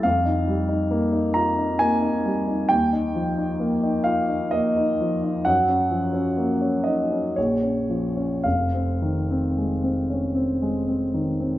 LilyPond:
\new Staff \with { instrumentName = "Grand piano" } { \time 3/4 \key f \minor \tempo 4 = 64 << { f''4. bes''8 aes''4 | g''4. f''8 ees''4 | ges''4. ees''8 des''4 | f''2~ f''8 r8 | } \\ { f,16 ees'16 g16 ees'16 bes16 ees'16 f'16 ees'16 bes16 ees'16 g16 ees'16 | ees,16 ees'16 f16 ees'16 bes16 ees'16 f'16 ees'16 bes16 ees'16 f16 ees'16 | ges,16 des'16 f16 des'16 bes16 des'16 ees'16 des'16 bes,,16 des'16 f16 des'16 | f,,16 c'16 ees16 c'16 aes16 c'16 des'16 c'16 aes16 c'16 ees16 c'16 | } >> }